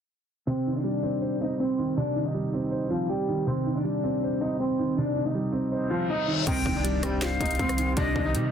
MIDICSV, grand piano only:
0, 0, Header, 1, 2, 480
1, 0, Start_track
1, 0, Key_signature, -3, "minor"
1, 0, Tempo, 375000
1, 602, Time_signature, 4, 2, 24, 8
1, 10898, End_track
2, 0, Start_track
2, 0, Title_t, "Grand piano"
2, 0, Program_c, 0, 0
2, 598, Note_on_c, 0, 48, 85
2, 836, Control_c, 0, 64, 127
2, 850, Note_on_c, 0, 51, 69
2, 1072, Note_on_c, 0, 55, 80
2, 1315, Note_on_c, 0, 60, 100
2, 1558, Note_on_c, 0, 72, 85
2, 1783, Note_off_c, 0, 60, 0
2, 1800, Note_off_c, 0, 48, 0
2, 1802, Note_on_c, 0, 60, 79
2, 2046, Note_off_c, 0, 51, 0
2, 2277, Note_off_c, 0, 55, 0
2, 2285, Note_on_c, 0, 51, 80
2, 2524, Note_on_c, 0, 48, 91
2, 2740, Note_off_c, 0, 51, 0
2, 2759, Note_on_c, 0, 51, 80
2, 2760, Note_off_c, 0, 72, 0
2, 2999, Note_on_c, 0, 55, 77
2, 3002, Note_off_c, 0, 60, 0
2, 3244, Note_on_c, 0, 60, 98
2, 3473, Note_on_c, 0, 72, 81
2, 3699, Note_off_c, 0, 60, 0
2, 3718, Note_on_c, 0, 60, 79
2, 3722, Note_off_c, 0, 48, 0
2, 3960, Note_off_c, 0, 51, 0
2, 4200, Note_off_c, 0, 55, 0
2, 4201, Note_on_c, 0, 51, 76
2, 4436, Note_on_c, 0, 48, 92
2, 4667, Note_off_c, 0, 51, 0
2, 4677, Note_off_c, 0, 72, 0
2, 4687, Note_on_c, 0, 51, 67
2, 4920, Note_off_c, 0, 60, 0
2, 4920, Note_on_c, 0, 55, 75
2, 5165, Note_on_c, 0, 60, 100
2, 5416, Note_on_c, 0, 72, 89
2, 5626, Note_off_c, 0, 60, 0
2, 5639, Note_off_c, 0, 48, 0
2, 5645, Note_on_c, 0, 60, 81
2, 5884, Note_off_c, 0, 51, 0
2, 6121, Note_off_c, 0, 55, 0
2, 6132, Note_on_c, 0, 51, 77
2, 6372, Note_on_c, 0, 48, 87
2, 6582, Note_off_c, 0, 51, 0
2, 6601, Note_on_c, 0, 51, 70
2, 6609, Note_off_c, 0, 72, 0
2, 6842, Note_on_c, 0, 55, 80
2, 6843, Note_off_c, 0, 60, 0
2, 7071, Note_on_c, 0, 60, 103
2, 7319, Note_on_c, 0, 72, 84
2, 7544, Note_off_c, 0, 60, 0
2, 7563, Note_on_c, 0, 60, 81
2, 7567, Note_off_c, 0, 48, 0
2, 7801, Note_off_c, 0, 51, 0
2, 8031, Note_on_c, 0, 51, 77
2, 8042, Note_off_c, 0, 55, 0
2, 8276, Note_off_c, 0, 51, 0
2, 8278, Note_on_c, 0, 48, 92
2, 8280, Note_off_c, 0, 72, 0
2, 8282, Note_off_c, 0, 60, 0
2, 8296, Control_c, 0, 64, 0
2, 8528, Note_on_c, 0, 51, 76
2, 8539, Control_c, 0, 64, 127
2, 8752, Note_on_c, 0, 55, 85
2, 8994, Note_on_c, 0, 60, 103
2, 9236, Note_on_c, 0, 72, 92
2, 9462, Note_off_c, 0, 60, 0
2, 9480, Note_off_c, 0, 48, 0
2, 9481, Note_on_c, 0, 60, 81
2, 9725, Note_off_c, 0, 51, 0
2, 9956, Note_off_c, 0, 55, 0
2, 9963, Note_on_c, 0, 51, 85
2, 10202, Note_on_c, 0, 48, 100
2, 10420, Note_off_c, 0, 51, 0
2, 10439, Note_off_c, 0, 72, 0
2, 10439, Note_on_c, 0, 51, 80
2, 10679, Note_on_c, 0, 55, 81
2, 10681, Note_off_c, 0, 60, 0
2, 10898, Note_off_c, 0, 48, 0
2, 10898, Note_off_c, 0, 51, 0
2, 10898, Note_off_c, 0, 55, 0
2, 10898, End_track
0, 0, End_of_file